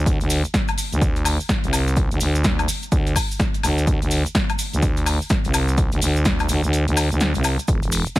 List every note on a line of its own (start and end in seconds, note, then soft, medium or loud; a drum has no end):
0.06 0.19 D2 medium
0.06 kick loud
0.06 closed hi-hat medium
0.06 cabasa medium
0.21 0.42 D2 loud
0.21 closed hi-hat medium
0.21 cabasa soft
0.30 open hi-hat loud
0.30 cabasa medium
0.44 closed hi-hat soft
0.44 cabasa soft
0.54 kick loud
0.54 snare loud
0.54 closed hi-hat medium
0.54 cabasa soft
0.68 closed hi-hat medium
0.68 cabasa soft
0.68 high woodblock medium
0.78 open hi-hat loud
0.78 cabasa medium
0.92 1.38 D2 medium
0.92 closed hi-hat soft
0.92 cabasa soft
1.01 kick loud
1.01 closed hi-hat medium
1.01 cabasa medium
1.16 closed hi-hat medium
1.16 cabasa soft
1.25 open hi-hat loud
1.25 cabasa medium
1.25 high woodblock medium
1.40 cabasa soft
1.49 kick loud
1.49 snare loud
1.49 closed hi-hat medium
1.49 cabasa medium
1.64 2.09 C2 loud
1.64 closed hi-hat soft
1.64 cabasa soft
1.73 open hi-hat loud
1.73 cabasa medium
1.73 high woodblock medium
1.88 closed hi-hat soft
1.88 cabasa soft
1.96 kick loud
1.96 closed hi-hat medium
1.96 cabasa soft
2.11 2.19 D2 loud
2.11 closed hi-hat medium
2.11 cabasa soft
2.20 2.67 D2 medium
2.20 open hi-hat loud
2.20 cabasa medium
2.35 closed hi-hat soft
2.35 cabasa soft
2.44 kick loud
2.44 snare loud
2.44 closed hi-hat medium
2.44 cabasa medium
2.59 closed hi-hat medium
2.59 cabasa soft
2.59 high woodblock medium
2.68 open hi-hat loud
2.68 cabasa medium
2.83 closed hi-hat soft
2.83 cabasa soft
2.92 3.14 D2 loud
2.92 kick loud
2.92 closed hi-hat medium
2.92 cabasa soft
3.07 closed hi-hat medium
3.07 cabasa soft
3.16 kick medium
3.16 open hi-hat loud
3.16 cabasa medium
3.16 high woodblock medium
3.31 cabasa soft
3.40 kick loud
3.40 snare loud
3.40 closed hi-hat medium
3.40 cabasa medium
3.54 closed hi-hat medium
3.54 cabasa soft
3.63 3.86 D2 loud
3.63 open hi-hat loud
3.63 cabasa medium
3.63 high woodblock medium
3.78 closed hi-hat soft
3.78 cabasa soft
3.87 4.00 D2 loud
3.87 kick loud
3.87 closed hi-hat medium
3.87 cabasa soft
4.02 4.23 D2 loud
4.02 closed hi-hat medium
4.02 cabasa soft
4.11 open hi-hat loud
4.11 cabasa medium
4.26 closed hi-hat soft
4.26 cabasa soft
4.35 kick loud
4.35 snare loud
4.35 closed hi-hat medium
4.35 cabasa soft
4.49 closed hi-hat medium
4.49 cabasa soft
4.49 high woodblock medium
4.59 open hi-hat loud
4.59 cabasa medium
4.73 5.19 D2 medium
4.73 closed hi-hat soft
4.73 cabasa soft
4.82 kick loud
4.82 closed hi-hat medium
4.82 cabasa soft
4.97 closed hi-hat medium
4.97 cabasa soft
5.06 open hi-hat loud
5.06 cabasa medium
5.06 high woodblock medium
5.22 cabasa soft
5.30 kick loud
5.30 snare loud
5.30 closed hi-hat medium
5.30 cabasa soft
5.45 5.90 C2 loud
5.45 closed hi-hat medium
5.45 cabasa soft
5.54 open hi-hat loud
5.54 cabasa medium
5.54 high woodblock medium
5.68 closed hi-hat soft
5.68 cabasa soft
5.78 kick loud
5.78 closed hi-hat medium
5.78 cabasa soft
5.92 6.00 D2 loud
5.92 closed hi-hat medium
5.92 cabasa soft
6.01 6.48 D2 loud
6.01 open hi-hat loud
6.01 cabasa medium
6.16 closed hi-hat soft
6.16 cabasa soft
6.25 kick loud
6.25 snare loud
6.25 closed hi-hat medium
6.25 cabasa medium
6.40 closed hi-hat medium
6.40 cabasa soft
6.40 high woodblock medium
6.49 6.61 D2 loud
6.49 open hi-hat loud
6.49 cabasa medium
6.64 6.85 D2 loud
6.64 closed hi-hat soft
6.64 cabasa soft
6.73 closed hi-hat medium
6.73 cabasa medium
6.88 7.09 D2 loud
6.88 closed hi-hat medium
6.88 cabasa soft
6.97 open hi-hat loud
6.97 cabasa medium
6.97 high woodblock medium
7.11 7.33 D2 medium
7.11 closed hi-hat soft
7.11 cabasa soft
7.20 snare loud
7.20 closed hi-hat medium
7.20 cabasa soft
7.34 7.57 C2 loud
7.34 closed hi-hat medium
7.34 cabasa soft
7.44 open hi-hat loud
7.44 cabasa medium
7.44 high woodblock medium
7.59 closed hi-hat soft
7.59 cabasa soft
7.68 7.81 E1 medium
7.68 kick loud
7.68 closed hi-hat medium
7.68 cabasa medium
7.82 8.04 E1 loud
7.82 closed hi-hat medium
7.82 cabasa soft
7.92 open hi-hat loud
7.92 cabasa medium
8.06 closed hi-hat soft
8.06 cabasa soft
8.16 kick loud
8.16 snare loud
8.16 closed hi-hat medium
8.16 cabasa medium